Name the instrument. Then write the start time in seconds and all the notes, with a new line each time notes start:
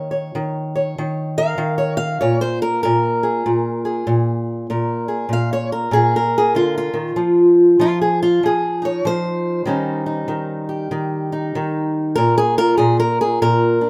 steel-string acoustic guitar
Already playing: D#3 A#3
0.11 C#5
0.35 D#3
0.76 C#5
0.98 D#3
1.38 A#4 F5
1.58 D#3
1.78 C#5
1.97 F5
2.21 A#2 C#5
2.41 C5
2.62 A#4
2.83 A#2 A#4
3.23 G#4
3.46 A#2
3.85 G#4
4.07 A#2
4.70 A#2 A#4
5.08 G#4
5.29 A#2
5.33 F5
5.53 C#5
5.72 A#4
5.91 A#2 G#4
6.16 A#4
6.38 G#4
6.55 D3 F4
6.78 F4
6.94 D#3
7.16 F3
7.79 F3 F4
8.01 G#4
8.23 F4
8.43 F3 G#4
8.82 D#4 C#5
9.05 F3 C5
9.66 D#3 G3 C#4 D#4
10.06 D#4
10.28 D#3
10.69 G4
10.91 D#3
11.32 D#4
11.55 D#3
12.15 A#2 A#4
12.38 G#4
12.58 F4 A#4
12.78 A#2 G#4
13.00 A#4
13.21 G#4
13.42 A#2 A#4
13.81 D4